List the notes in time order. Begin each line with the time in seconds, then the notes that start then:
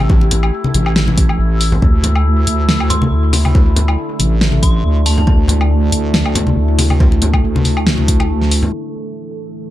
Already playing: A1 A3 E4 G4
0.10 kick, low conga
0.21 muted conga
0.31 closed hi-hat, low conga
0.43 low woodblock
0.64 high conga
0.74 A1, closed hi-hat, high conga
0.86 low woodblock
0.96 snare
1.08 high conga
1.18 kick, closed hi-hat
1.29 low woodblock
1.39 A1
1.61 open hi-hat
1.72 low conga
1.82 D2 D3, kick, low conga
2.04 closed hi-hat, low conga
2.15 low woodblock
2.47 D2, closed hi-hat
2.69 snare
2.80 low woodblock
2.90 C6, closed hi-hat, low conga
3.02 high conga
3.12 D2
3.33 open hi-hat, muted conga
3.45 high conga, low woodblock
3.55 kick, low conga
3.76 closed hi-hat, low conga
3.88 low woodblock
4.19 A1, closed hi-hat, high conga
4.41 snare
4.52 high conga
4.63 C6, kick, closed hi-hat
4.84 D2
5.06 A5, open hi-hat
5.18 A5, low conga
5.27 D2, kick, low conga
5.48 closed hi-hat, low conga
5.61 low woodblock
5.92 D2, closed hi-hat
6.14 snare
6.26 low woodblock
6.35 closed hi-hat, low conga
6.47 high conga
6.57 D2
6.79 open hi-hat, muted conga
6.90 high conga, low woodblock
7.00 kick, low conga
7.12 muted conga
7.22 closed hi-hat, low conga
7.33 kick, low woodblock
7.43 D2
7.56 high conga
7.65 open hi-hat, high conga
7.77 low woodblock
7.87 snare
7.98 high conga
8.08 kick, closed hi-hat
8.20 muted conga, low woodblock
8.42 snare
8.51 open hi-hat
8.63 low conga
8.73 A2 E3 A3